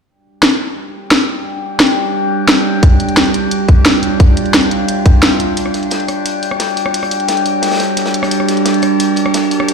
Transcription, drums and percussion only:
0.43 snare loud
1.11 snare loud
1.80 snare loud
2.48 snare loud
2.83 kick loud
2.83 closed hi-hat medium
3.00 closed hi-hat medium
3.09 closed hi-hat soft
3.17 snare loud
3.17 closed hi-hat medium
3.26 closed hi-hat soft
3.34 closed hi-hat medium
3.51 closed hi-hat medium
3.69 kick loud
3.69 closed hi-hat medium
3.86 snare loud
3.86 closed hi-hat medium
4.03 closed hi-hat medium
4.20 kick loud
4.20 closed hi-hat medium
4.37 closed hi-hat medium
4.46 closed hi-hat soft
4.54 snare loud
4.54 closed hi-hat medium
4.63 closed hi-hat soft
4.71 closed hi-hat medium
4.88 closed hi-hat medium
5.06 kick loud
5.06 closed hi-hat medium
5.23 snare loud
5.23 closed hi-hat medium
5.40 closed hi-hat medium
5.57 closed hi-hat medium
5.66 cross-stick soft
5.74 snare soft
5.74 closed hi-hat medium
5.83 closed hi-hat soft
5.91 snare loud
5.91 closed hi-hat medium
6.00 closed hi-hat soft
6.08 cross-stick soft
6.08 closed hi-hat medium
6.26 closed hi-hat medium
6.43 closed hi-hat medium
6.51 cross-stick soft
6.60 snare loud
6.60 closed hi-hat medium
6.68 closed hi-hat soft
6.77 closed hi-hat medium
6.86 cross-stick soft
6.94 closed hi-hat medium
6.94 open hi-hat medium
7.03 cross-stick soft
7.03 closed hi-hat soft
7.11 closed hi-hat medium
7.20 closed hi-hat soft
7.28 snare loud
7.28 closed hi-hat medium
7.37 closed hi-hat soft
7.46 closed hi-hat medium
7.62 snare medium
7.62 closed hi-hat medium
7.67 snare medium
7.67 closed hi-hat medium
7.71 snare medium
7.71 closed hi-hat medium
7.75 snare medium
7.75 closed hi-hat medium
7.80 snare medium
7.80 closed hi-hat medium
7.97 snare soft
7.97 closed hi-hat medium
8.05 snare loud
8.05 closed hi-hat medium
8.14 closed hi-hat medium
8.23 cross-stick medium
8.23 snare soft
8.23 closed hi-hat medium
8.31 closed hi-hat medium
8.40 cross-stick soft
8.48 snare soft
8.48 closed hi-hat medium
8.57 closed hi-hat soft
8.65 snare loud
8.65 closed hi-hat medium
8.74 closed hi-hat soft
8.82 cross-stick soft
8.82 closed hi-hat medium
9.00 closed hi-hat medium
9.16 closed hi-hat medium
9.26 cross-stick soft
9.34 snare loud
9.34 closed hi-hat medium
9.43 closed hi-hat soft
9.51 closed hi-hat medium
9.60 cross-stick soft
9.68 closed hi-hat medium
9.68 open hi-hat medium

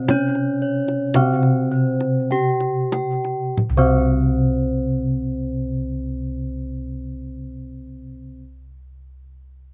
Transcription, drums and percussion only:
0.08 kendang high medium
0.08 kendang low medium
0.35 kendang slap soft
0.88 kendang slap soft
1.14 kendang high medium
1.14 kendang low medium
1.43 kendang slap soft
2.00 kendang slap soft
2.60 kendang slap soft
2.92 kendang high medium
3.25 kendang slap soft
3.57 kendang low medium

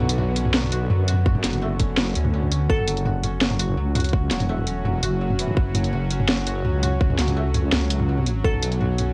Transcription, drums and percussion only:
0.09 closed hi-hat medium
0.18 mid tom medium
0.36 closed hi-hat medium
0.45 mid tom medium
0.54 snare loud
0.63 mid tom medium
0.72 closed hi-hat medium
0.90 mid tom medium
1.08 closed hi-hat medium
1.13 mid tom medium
1.26 kick loud
1.35 mid tom medium
1.44 snare medium
1.44 closed hi-hat medium
1.53 closed hi-hat soft
1.53 mid tom medium
1.80 kick medium
1.80 closed hi-hat medium
1.80 mid tom medium
1.98 snare loud
1.98 mid tom medium
2.15 closed hi-hat medium
2.25 mid tom medium
2.43 mid tom medium
2.52 closed hi-hat medium
2.70 kick loud
2.79 mid tom medium
2.88 closed hi-hat medium
2.97 closed hi-hat soft
3.06 mid tom medium
3.24 closed hi-hat medium
3.24 mid tom medium
3.42 snare loud
3.51 mid tom medium
3.60 closed hi-hat medium
3.69 mid tom medium
3.95 closed hi-hat medium
3.95 mid tom medium
4.00 closed hi-hat medium
4.04 closed hi-hat soft
4.09 closed hi-hat soft
4.13 kick loud
4.13 mid tom medium
4.31 snare medium
4.31 closed hi-hat medium
4.40 closed hi-hat soft
4.40 mid tom medium
4.58 mid tom medium
4.67 closed hi-hat medium
4.85 mid tom medium
5.03 closed hi-hat medium
5.03 mid tom medium
5.30 mid tom medium
5.39 closed hi-hat medium
5.48 mid tom medium
5.57 kick loud
5.75 closed hi-hat medium
5.75 mid tom medium
5.84 closed hi-hat soft
5.93 mid tom medium
6.11 closed hi-hat medium
6.20 mid tom medium
6.29 snare loud
6.47 closed hi-hat medium
6.65 mid tom medium
6.83 closed hi-hat medium
6.83 mid tom medium
7.01 kick loud
7.10 mid tom medium
7.19 snare medium
7.19 closed hi-hat medium
7.28 closed hi-hat soft
7.28 mid tom medium
7.54 closed hi-hat medium
7.54 mid tom medium
7.73 snare loud
7.73 mid tom medium
7.90 closed hi-hat medium
8.00 mid tom medium
8.18 mid tom soft
8.26 closed hi-hat medium
8.44 kick loud
8.54 mid tom medium
8.63 closed hi-hat medium
8.72 closed hi-hat soft
8.80 mid tom medium
8.98 closed hi-hat medium
8.98 mid tom medium

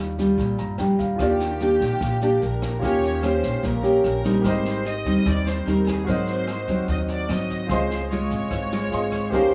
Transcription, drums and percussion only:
0.18 kick soft
0.18 snare soft
0.38 kick medium
0.38 snare soft
0.58 snare soft
0.78 cross-stick medium
0.78 snare soft
0.99 kick soft
0.99 snare soft
1.19 kick medium
1.19 cross-stick medium
1.19 snare soft
1.40 snare soft
1.60 snare soft
1.81 kick soft
1.81 snare soft
2.01 kick medium
2.01 cross-stick medium
2.01 snare soft
2.21 snare soft
2.42 snare soft
2.62 kick soft
2.62 cross-stick medium
2.62 snare soft
2.82 kick medium
2.82 snare soft
3.03 snare soft
3.23 cross-stick medium
3.23 snare soft
3.43 kick soft
3.43 snare soft
3.63 kick medium
3.63 snare soft
3.84 snare soft
4.04 cross-stick medium
4.04 snare soft
4.24 kick soft
4.24 snare soft
4.44 kick medium
4.44 cross-stick medium
4.44 snare soft
4.65 snare soft
4.85 snare soft
5.05 kick soft
5.05 snare soft
5.26 kick medium
5.26 cross-stick medium
5.26 snare soft
5.46 snare soft
5.67 snare soft
5.87 kick soft
5.87 cross-stick medium
5.87 snare soft
6.07 kick medium
6.07 snare soft
6.27 snare soft
6.47 cross-stick medium
6.47 snare soft
6.68 kick soft
6.68 snare soft
6.88 kick medium
6.88 snare soft
7.08 snare soft
7.29 cross-stick medium
7.29 snare soft
7.49 kick soft
7.49 snare soft
7.69 kick medium
7.69 cross-stick medium
7.69 snare soft
7.90 snare soft
8.11 snare soft
8.31 kick soft
8.31 snare soft
8.51 kick medium
8.51 cross-stick medium
8.51 snare soft
8.72 snare soft
8.92 snare soft
9.12 kick soft
9.12 cross-stick medium
9.12 snare soft
9.32 kick medium
9.32 snare soft

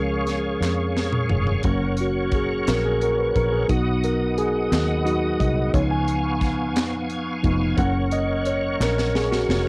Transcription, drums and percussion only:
0.27 snare soft
0.27 closed hi-hat soft
0.63 snare soft
0.63 clap medium
0.97 snare medium
1.12 mid tom medium
1.29 floor tom medium
1.47 floor tom medium
1.63 kick medium
1.63 closed hi-hat medium
1.97 closed hi-hat medium
2.32 kick medium
2.32 closed hi-hat medium
2.67 snare loud
2.67 clap medium
2.67 closed hi-hat medium
3.01 closed hi-hat soft
3.36 kick medium
3.36 closed hi-hat soft
3.69 kick medium
3.69 closed hi-hat medium
4.04 closed hi-hat medium
4.38 closed hi-hat medium
4.73 snare loud
4.73 clap medium
4.73 closed hi-hat medium
5.07 closed hi-hat soft
5.40 kick medium
5.40 closed hi-hat medium
5.74 kick medium
5.74 closed hi-hat medium
6.08 closed hi-hat medium
6.41 kick medium
6.41 snare soft
6.41 closed hi-hat medium
6.76 snare loud
6.76 clap medium
6.76 closed hi-hat medium
7.10 closed hi-hat soft
7.44 kick medium
7.44 closed hi-hat soft
7.78 kick medium
7.78 closed hi-hat medium
8.11 closed hi-hat medium
8.45 closed hi-hat soft
8.81 snare medium
8.81 clap medium
8.98 snare medium
9.15 snare medium
9.32 snare medium
9.50 snare medium

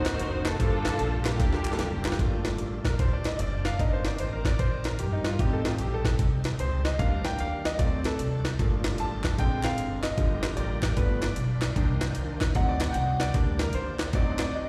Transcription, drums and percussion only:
0.05 snare loud
0.05 clap medium
0.05 closed hi-hat medium
0.19 closed hi-hat loud
0.45 snare loud
0.45 clap loud
0.45 closed hi-hat medium
0.60 kick loud
0.60 closed hi-hat medium
0.85 snare loud
0.85 clap loud
0.85 closed hi-hat medium
0.99 closed hi-hat medium
1.25 snare loud
1.25 clap medium
1.25 closed hi-hat medium
1.40 kick loud
1.40 snare medium
1.40 closed hi-hat medium
1.53 snare medium
1.64 clap medium
1.64 closed hi-hat medium
1.72 snare medium
1.79 snare medium
1.79 closed hi-hat loud
2.05 snare loud
2.05 clap medium
2.05 closed hi-hat medium
2.12 snare medium
2.19 kick loud
2.19 closed hi-hat medium
2.45 snare medium
2.45 closed hi-hat medium
2.58 closed hi-hat medium
2.85 kick medium
2.85 snare loud
2.85 closed hi-hat medium
2.99 kick loud
2.99 closed hi-hat medium
3.24 snare loud
3.24 closed hi-hat medium
3.39 closed hi-hat loud
3.65 snare medium
3.65 closed hi-hat medium
3.79 kick medium
3.79 closed hi-hat medium
4.05 snare medium
4.05 closed hi-hat medium
4.18 closed hi-hat medium
4.45 kick medium
4.45 snare loud
4.45 closed hi-hat medium
4.59 kick loud
4.59 closed hi-hat medium
4.84 snare medium
4.84 closed hi-hat medium
4.99 closed hi-hat loud
5.24 snare medium
5.24 closed hi-hat medium
5.39 kick loud
5.39 closed hi-hat medium
5.65 snare loud
5.65 closed hi-hat medium
5.78 closed hi-hat medium
6.05 kick medium
6.05 snare loud
6.05 closed hi-hat medium
6.19 kick loud
6.19 closed hi-hat medium
6.44 snare loud
6.44 closed hi-hat medium
6.59 closed hi-hat loud
6.85 snare medium
6.85 closed hi-hat medium
6.99 kick loud
6.99 closed hi-hat medium
7.25 snare loud
7.25 closed hi-hat medium
7.39 closed hi-hat medium
7.65 snare loud
7.65 closed hi-hat medium
7.79 kick loud
7.79 closed hi-hat medium
8.04 snare loud
8.04 closed hi-hat medium
8.19 closed hi-hat loud
8.45 snare medium
8.45 closed hi-hat medium
8.59 kick loud
8.59 closed hi-hat medium
8.84 snare loud
8.84 clap medium
8.84 closed hi-hat medium
8.98 closed hi-hat medium
9.24 kick medium
9.24 snare loud
9.24 clap medium
9.24 closed hi-hat medium
9.38 kick loud
9.38 closed hi-hat medium
9.63 snare loud
9.63 clap medium
9.63 closed hi-hat medium
9.78 closed hi-hat loud
10.03 snare medium
10.03 clap medium
10.03 closed hi-hat medium
10.18 kick loud
10.18 closed hi-hat medium
10.43 snare loud
10.43 clap medium
10.43 closed hi-hat medium
10.57 closed hi-hat medium
10.83 kick medium
10.83 snare loud
10.83 clap medium
10.83 closed hi-hat medium
10.97 kick loud
10.97 closed hi-hat medium
11.22 snare loud
11.22 clap medium
11.22 closed hi-hat medium
11.36 closed hi-hat medium
11.62 snare loud
11.62 clap medium
11.62 closed hi-hat medium
11.76 kick loud
11.76 closed hi-hat medium
12.01 snare loud
12.01 clap medium
12.01 closed hi-hat medium
12.15 closed hi-hat medium
12.41 kick medium
12.41 snare loud
12.41 clap medium
12.41 closed hi-hat medium
12.55 kick loud
12.55 closed hi-hat medium
12.80 snare loud
12.80 clap medium
12.80 closed hi-hat medium
12.94 closed hi-hat loud
13.20 snare medium
13.20 clap medium
13.20 closed hi-hat medium
13.34 kick loud
13.34 closed hi-hat medium
13.59 snare loud
13.59 clap medium
13.59 closed hi-hat medium
13.73 closed hi-hat medium
13.99 snare loud
13.99 clap medium
13.99 closed hi-hat medium
14.13 kick loud
14.13 closed hi-hat medium
14.38 snare loud
14.38 clap medium
14.38 closed hi-hat medium

